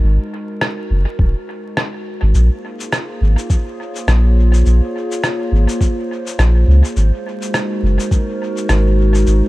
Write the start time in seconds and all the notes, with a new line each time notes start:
Already playing: G#3 D#4 F#4 A#4 C5
0.03 G#1
0.61 cross-stick
0.90 F#1
1.19 D#1, kick
1.77 cross-stick
2.22 G#1
2.34 A#1 A#3, shaker
2.44 F4 G#4
2.55 C5
2.80 shaker
2.92 cross-stick, shaker
3.21 G#1
3.38 shaker
3.44 C#5
3.50 kick, shaker
3.96 shaker
4.07 A#1, cross-stick, shaker
4.54 shaker
4.66 A#1, shaker
5.12 shaker
5.24 cross-stick, shaker
5.52 G#1
5.69 shaker
5.81 kick, shaker
6.27 shaker
6.38 A#1, cross-stick, shaker
6.67 C#2
6.85 shaker
6.96 G#1 G#3, shaker
7.13 F#4
7.18 D#4
7.42 A#4, shaker
7.54 cross-stick, shaker
7.83 F#1
8.00 shaker
8.11 kick, shaker
8.57 shaker
8.69 G#1, cross-stick, shaker
9.15 shaker
9.27 G#1, shaker